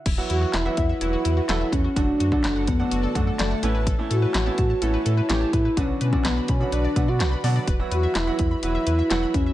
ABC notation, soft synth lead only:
X:1
M:4/4
L:1/16
Q:1/4=126
K:Amix
V:1 name="Soft synth lead"
z2 F2 E4 E6 C2 | D6 B,4 A,2 A,3 z | z2 F6 E6 E2 | C2 C2 B,2 C2 D2 D F3 z2 |
z2 F2 E4 E6 C2 |]